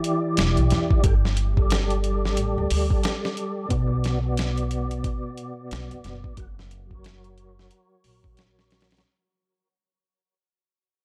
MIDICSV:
0, 0, Header, 1, 4, 480
1, 0, Start_track
1, 0, Tempo, 666667
1, 750, Time_signature, 4, 2, 24, 8
1, 7950, End_track
2, 0, Start_track
2, 0, Title_t, "Tonewheel organ"
2, 0, Program_c, 0, 16
2, 0, Note_on_c, 0, 52, 90
2, 0, Note_on_c, 0, 64, 84
2, 0, Note_on_c, 0, 67, 79
2, 0, Note_on_c, 0, 74, 103
2, 716, Note_off_c, 0, 52, 0
2, 724, Note_off_c, 0, 64, 0
2, 734, Note_off_c, 0, 67, 0
2, 737, Note_on_c, 0, 55, 91
2, 743, Note_off_c, 0, 74, 0
2, 747, Note_on_c, 0, 67, 78
2, 758, Note_on_c, 0, 69, 81
2, 767, Note_on_c, 0, 79, 101
2, 813, Note_off_c, 0, 55, 0
2, 818, Note_off_c, 0, 67, 0
2, 824, Note_off_c, 0, 69, 0
2, 828, Note_off_c, 0, 79, 0
2, 1106, Note_on_c, 0, 55, 84
2, 1125, Note_on_c, 0, 67, 77
2, 1144, Note_on_c, 0, 69, 75
2, 1166, Note_on_c, 0, 74, 94
2, 2634, Note_off_c, 0, 55, 0
2, 2643, Note_off_c, 0, 67, 0
2, 2653, Note_off_c, 0, 69, 0
2, 2654, Note_on_c, 0, 47, 92
2, 2663, Note_on_c, 0, 59, 84
2, 2664, Note_off_c, 0, 74, 0
2, 2672, Note_on_c, 0, 66, 85
2, 2684, Note_on_c, 0, 74, 107
2, 3011, Note_off_c, 0, 47, 0
2, 3015, Note_off_c, 0, 59, 0
2, 3020, Note_off_c, 0, 66, 0
2, 3026, Note_off_c, 0, 74, 0
2, 3047, Note_on_c, 0, 59, 79
2, 3064, Note_on_c, 0, 66, 79
2, 3084, Note_on_c, 0, 74, 95
2, 4564, Note_off_c, 0, 59, 0
2, 4572, Note_off_c, 0, 66, 0
2, 4579, Note_on_c, 0, 54, 79
2, 4582, Note_off_c, 0, 74, 0
2, 4587, Note_on_c, 0, 66, 78
2, 4595, Note_on_c, 0, 70, 77
2, 4606, Note_on_c, 0, 78, 91
2, 4654, Note_off_c, 0, 54, 0
2, 4658, Note_off_c, 0, 66, 0
2, 4663, Note_off_c, 0, 70, 0
2, 4668, Note_off_c, 0, 78, 0
2, 4945, Note_on_c, 0, 54, 81
2, 4962, Note_on_c, 0, 66, 71
2, 4982, Note_on_c, 0, 70, 72
2, 5000, Note_on_c, 0, 73, 90
2, 6473, Note_off_c, 0, 54, 0
2, 6481, Note_off_c, 0, 66, 0
2, 6492, Note_off_c, 0, 70, 0
2, 6501, Note_off_c, 0, 73, 0
2, 7950, End_track
3, 0, Start_track
3, 0, Title_t, "Upright bass"
3, 0, Program_c, 1, 32
3, 274, Note_on_c, 1, 28, 83
3, 398, Note_off_c, 1, 28, 0
3, 417, Note_on_c, 1, 35, 79
3, 501, Note_off_c, 1, 35, 0
3, 514, Note_on_c, 1, 40, 92
3, 638, Note_off_c, 1, 40, 0
3, 750, Note_on_c, 1, 31, 92
3, 1712, Note_off_c, 1, 31, 0
3, 1712, Note_on_c, 1, 33, 82
3, 1837, Note_off_c, 1, 33, 0
3, 1856, Note_on_c, 1, 38, 89
3, 1940, Note_off_c, 1, 38, 0
3, 1955, Note_on_c, 1, 38, 82
3, 2078, Note_off_c, 1, 38, 0
3, 2672, Note_on_c, 1, 35, 95
3, 3613, Note_off_c, 1, 35, 0
3, 4115, Note_on_c, 1, 35, 78
3, 4239, Note_off_c, 1, 35, 0
3, 4257, Note_on_c, 1, 30, 79
3, 4341, Note_off_c, 1, 30, 0
3, 4353, Note_on_c, 1, 30, 88
3, 4478, Note_off_c, 1, 30, 0
3, 4593, Note_on_c, 1, 30, 91
3, 5533, Note_off_c, 1, 30, 0
3, 5792, Note_on_c, 1, 34, 74
3, 6493, Note_off_c, 1, 34, 0
3, 7950, End_track
4, 0, Start_track
4, 0, Title_t, "Drums"
4, 29, Note_on_c, 9, 42, 63
4, 101, Note_off_c, 9, 42, 0
4, 267, Note_on_c, 9, 42, 86
4, 279, Note_on_c, 9, 38, 105
4, 339, Note_off_c, 9, 42, 0
4, 351, Note_off_c, 9, 38, 0
4, 412, Note_on_c, 9, 42, 40
4, 484, Note_off_c, 9, 42, 0
4, 507, Note_on_c, 9, 42, 66
4, 519, Note_on_c, 9, 38, 35
4, 579, Note_off_c, 9, 42, 0
4, 591, Note_off_c, 9, 38, 0
4, 652, Note_on_c, 9, 36, 92
4, 724, Note_off_c, 9, 36, 0
4, 746, Note_on_c, 9, 42, 81
4, 749, Note_on_c, 9, 36, 102
4, 818, Note_off_c, 9, 42, 0
4, 821, Note_off_c, 9, 36, 0
4, 902, Note_on_c, 9, 38, 36
4, 974, Note_off_c, 9, 38, 0
4, 985, Note_on_c, 9, 42, 63
4, 1057, Note_off_c, 9, 42, 0
4, 1132, Note_on_c, 9, 36, 88
4, 1204, Note_off_c, 9, 36, 0
4, 1227, Note_on_c, 9, 42, 79
4, 1239, Note_on_c, 9, 38, 104
4, 1299, Note_off_c, 9, 42, 0
4, 1311, Note_off_c, 9, 38, 0
4, 1371, Note_on_c, 9, 42, 44
4, 1443, Note_off_c, 9, 42, 0
4, 1467, Note_on_c, 9, 42, 57
4, 1539, Note_off_c, 9, 42, 0
4, 1623, Note_on_c, 9, 38, 37
4, 1695, Note_off_c, 9, 38, 0
4, 1707, Note_on_c, 9, 42, 82
4, 1779, Note_off_c, 9, 42, 0
4, 1947, Note_on_c, 9, 46, 75
4, 2019, Note_off_c, 9, 46, 0
4, 2091, Note_on_c, 9, 36, 88
4, 2163, Note_off_c, 9, 36, 0
4, 2185, Note_on_c, 9, 42, 78
4, 2197, Note_on_c, 9, 38, 105
4, 2257, Note_off_c, 9, 42, 0
4, 2269, Note_off_c, 9, 38, 0
4, 2341, Note_on_c, 9, 38, 51
4, 2413, Note_off_c, 9, 38, 0
4, 2427, Note_on_c, 9, 42, 61
4, 2499, Note_off_c, 9, 42, 0
4, 2667, Note_on_c, 9, 42, 73
4, 2669, Note_on_c, 9, 36, 101
4, 2739, Note_off_c, 9, 42, 0
4, 2741, Note_off_c, 9, 36, 0
4, 2909, Note_on_c, 9, 42, 61
4, 2921, Note_on_c, 9, 38, 49
4, 2981, Note_off_c, 9, 42, 0
4, 2993, Note_off_c, 9, 38, 0
4, 3149, Note_on_c, 9, 42, 78
4, 3161, Note_on_c, 9, 38, 100
4, 3221, Note_off_c, 9, 42, 0
4, 3233, Note_off_c, 9, 38, 0
4, 3294, Note_on_c, 9, 42, 41
4, 3366, Note_off_c, 9, 42, 0
4, 3390, Note_on_c, 9, 42, 56
4, 3462, Note_off_c, 9, 42, 0
4, 3535, Note_on_c, 9, 42, 40
4, 3607, Note_off_c, 9, 42, 0
4, 3630, Note_on_c, 9, 36, 96
4, 3630, Note_on_c, 9, 42, 73
4, 3702, Note_off_c, 9, 36, 0
4, 3702, Note_off_c, 9, 42, 0
4, 3870, Note_on_c, 9, 42, 58
4, 3942, Note_off_c, 9, 42, 0
4, 4113, Note_on_c, 9, 42, 77
4, 4125, Note_on_c, 9, 38, 96
4, 4185, Note_off_c, 9, 42, 0
4, 4197, Note_off_c, 9, 38, 0
4, 4256, Note_on_c, 9, 42, 41
4, 4328, Note_off_c, 9, 42, 0
4, 4350, Note_on_c, 9, 42, 58
4, 4362, Note_on_c, 9, 38, 33
4, 4422, Note_off_c, 9, 42, 0
4, 4434, Note_off_c, 9, 38, 0
4, 4493, Note_on_c, 9, 36, 85
4, 4565, Note_off_c, 9, 36, 0
4, 4587, Note_on_c, 9, 42, 74
4, 4590, Note_on_c, 9, 36, 86
4, 4659, Note_off_c, 9, 42, 0
4, 4662, Note_off_c, 9, 36, 0
4, 4746, Note_on_c, 9, 38, 33
4, 4818, Note_off_c, 9, 38, 0
4, 4832, Note_on_c, 9, 42, 59
4, 4904, Note_off_c, 9, 42, 0
4, 4974, Note_on_c, 9, 36, 84
4, 5046, Note_off_c, 9, 36, 0
4, 5071, Note_on_c, 9, 42, 70
4, 5083, Note_on_c, 9, 38, 92
4, 5143, Note_off_c, 9, 42, 0
4, 5155, Note_off_c, 9, 38, 0
4, 5215, Note_on_c, 9, 42, 39
4, 5287, Note_off_c, 9, 42, 0
4, 5311, Note_on_c, 9, 42, 57
4, 5383, Note_off_c, 9, 42, 0
4, 5467, Note_on_c, 9, 38, 37
4, 5539, Note_off_c, 9, 38, 0
4, 5549, Note_on_c, 9, 42, 78
4, 5621, Note_off_c, 9, 42, 0
4, 5789, Note_on_c, 9, 46, 70
4, 5861, Note_off_c, 9, 46, 0
4, 5934, Note_on_c, 9, 36, 84
4, 6006, Note_off_c, 9, 36, 0
4, 6027, Note_on_c, 9, 42, 75
4, 6039, Note_on_c, 9, 38, 97
4, 6099, Note_off_c, 9, 42, 0
4, 6111, Note_off_c, 9, 38, 0
4, 6184, Note_on_c, 9, 38, 49
4, 6256, Note_off_c, 9, 38, 0
4, 6268, Note_on_c, 9, 42, 57
4, 6280, Note_on_c, 9, 38, 73
4, 6340, Note_off_c, 9, 42, 0
4, 6340, Note_on_c, 9, 42, 54
4, 6352, Note_off_c, 9, 38, 0
4, 6352, Note_on_c, 9, 38, 73
4, 6412, Note_off_c, 9, 42, 0
4, 6412, Note_on_c, 9, 42, 57
4, 6424, Note_off_c, 9, 38, 0
4, 6424, Note_on_c, 9, 38, 79
4, 6458, Note_off_c, 9, 42, 0
4, 6458, Note_on_c, 9, 42, 56
4, 6469, Note_off_c, 9, 38, 0
4, 6469, Note_on_c, 9, 38, 75
4, 6530, Note_off_c, 9, 42, 0
4, 6541, Note_off_c, 9, 38, 0
4, 7950, End_track
0, 0, End_of_file